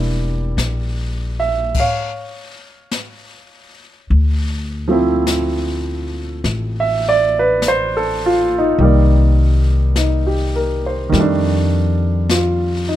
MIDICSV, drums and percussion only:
0, 0, Header, 1, 2, 480
1, 0, Start_track
1, 0, Key_signature, -1, "minor"
1, 0, Tempo, 1171875
1, 1681, Time_signature, 4, 2, 24, 8
1, 5308, End_track
2, 0, Start_track
2, 0, Title_t, "Drums"
2, 237, Note_on_c, 9, 25, 38
2, 237, Note_on_c, 9, 38, 38
2, 237, Note_on_c, 9, 44, 51
2, 278, Note_off_c, 9, 38, 0
2, 278, Note_off_c, 9, 44, 0
2, 715, Note_off_c, 9, 25, 0
2, 715, Note_on_c, 9, 25, 31
2, 715, Note_on_c, 9, 49, 54
2, 716, Note_on_c, 9, 36, 60
2, 756, Note_off_c, 9, 49, 0
2, 757, Note_off_c, 9, 36, 0
2, 1194, Note_off_c, 9, 25, 0
2, 1194, Note_on_c, 9, 25, 28
2, 1194, Note_on_c, 9, 38, 38
2, 1194, Note_on_c, 9, 44, 45
2, 1235, Note_off_c, 9, 38, 0
2, 1235, Note_off_c, 9, 44, 0
2, 1680, Note_off_c, 9, 25, 0
2, 1680, Note_on_c, 9, 25, 32
2, 2158, Note_off_c, 9, 25, 0
2, 2158, Note_on_c, 9, 25, 39
2, 2158, Note_on_c, 9, 38, 44
2, 2158, Note_on_c, 9, 44, 58
2, 2199, Note_off_c, 9, 38, 0
2, 2199, Note_off_c, 9, 44, 0
2, 2639, Note_off_c, 9, 25, 0
2, 2639, Note_on_c, 9, 25, 33
2, 2639, Note_on_c, 9, 38, 30
2, 2680, Note_off_c, 9, 38, 0
2, 3121, Note_off_c, 9, 25, 0
2, 3121, Note_on_c, 9, 25, 34
2, 3121, Note_on_c, 9, 38, 44
2, 3121, Note_on_c, 9, 44, 54
2, 3162, Note_off_c, 9, 38, 0
2, 3162, Note_off_c, 9, 44, 0
2, 3601, Note_off_c, 9, 25, 0
2, 3601, Note_on_c, 9, 25, 35
2, 4079, Note_off_c, 9, 25, 0
2, 4079, Note_on_c, 9, 25, 36
2, 4079, Note_on_c, 9, 38, 47
2, 4079, Note_on_c, 9, 44, 48
2, 4119, Note_off_c, 9, 38, 0
2, 4119, Note_off_c, 9, 44, 0
2, 4560, Note_off_c, 9, 25, 0
2, 4560, Note_on_c, 9, 25, 32
2, 4560, Note_on_c, 9, 38, 29
2, 4601, Note_off_c, 9, 38, 0
2, 5036, Note_off_c, 9, 25, 0
2, 5036, Note_on_c, 9, 25, 36
2, 5036, Note_on_c, 9, 38, 49
2, 5036, Note_on_c, 9, 44, 47
2, 5077, Note_off_c, 9, 38, 0
2, 5077, Note_off_c, 9, 44, 0
2, 5308, Note_off_c, 9, 25, 0
2, 5308, End_track
0, 0, End_of_file